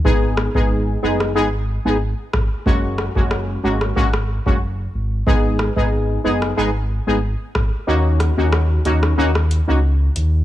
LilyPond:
<<
  \new Staff \with { instrumentName = "Synth stab" } { \time 4/4 \key gis \minor \tempo 4 = 92 <gis b dis' gis'>8. <gis b dis' gis'>8. <gis b dis' gis'>8 <gis b dis' gis'>16 r8 <gis b dis' gis'>16 r4 | <gis ais cis' fis'>8. <gis ais cis' fis'>8. <gis ais cis' fis'>8 <gis ais cis' fis'>16 r8 <gis ais cis' fis'>16 r4 | <gis b dis' gis'>8. <gis b dis' gis'>8. <gis b dis' gis'>8 <gis b dis' gis'>16 r8 <gis b dis' gis'>16 r4 | <ais cis' dis' fis'>8. <ais cis' dis' fis'>8. <ais cis' dis' fis'>8 <ais cis' dis' fis'>16 r8 <ais cis' dis' fis'>16 r4 | }
  \new Staff \with { instrumentName = "Sub bass" } { \clef bass \time 4/4 \key gis \minor gis,,8. gis,,8. fis,,8 gis,,8. gis,,8 r16 gis,,16 r16 | fis,,8. fis,,8. gis,,8 gis,,8. fis,,8. gis,,8 | gis,,8. gis,,8. fis,,8 gis,,8. gis,,8 r16 gis,,16 r16 | dis,8. dis,8. dis,8 dis,8. cis,8. dis,8 | }
  \new DrumStaff \with { instrumentName = "Drums" } \drummode { \time 4/4 bd8 ss16 bd16 r8. ss16 r4 r8 <bd ss>8 | bd8 ss16 bd16 ss8. ss16 bd16 ss8 bd16 r4 | bd8 ss16 bd16 r8. ss16 r4 r8 <bd ss>8 | r8 <hh ss>8 ss8 hh16 ss16 r16 ss16 hh8 r8 hh8 | }
>>